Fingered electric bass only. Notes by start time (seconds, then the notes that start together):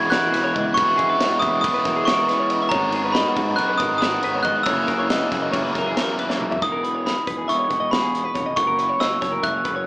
Already playing: E1
0.34 E1
0.56 C#2
0.77 E1
0.99 E1
1.42 E1
1.64 E1
1.85 E1
2.72 G#1
3.36 G#2
3.58 B1
3.80 G#1
4.23 G#1
4.45 G#1
4.66 F#1
4.88 F#1
5.32 F#1
5.54 F#1
5.75 F#1
6.62 E1
7.27 E1
7.48 E1
7.71 E1
8.35 F1
8.57 F#1
9.00 F#1
9.22 F#1
9.44 F#1
9.65 F#1